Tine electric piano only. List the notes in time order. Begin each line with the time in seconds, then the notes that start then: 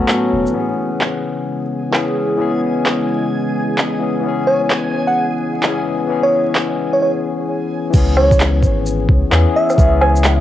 Already playing: F#3 B3 C#4 F#4 A4
0.51 E3 B3
0.56 C#4 G#4
1.91 E3 B3 C#4
1.96 G#4
2.37 E3 B3 C#4 G#4
3.99 E3 B3 C#4
4.03 G#4
4.21 E3 B3
4.26 C#4 G#4
5.62 E3 B3 C#4 G#4
6.08 E3 B3 C#4
6.12 G#4
7.90 E3 B3
7.96 C#4 G#4
9.30 E3 B3 C#4 G#4
9.77 E3 B3 C#4 G#4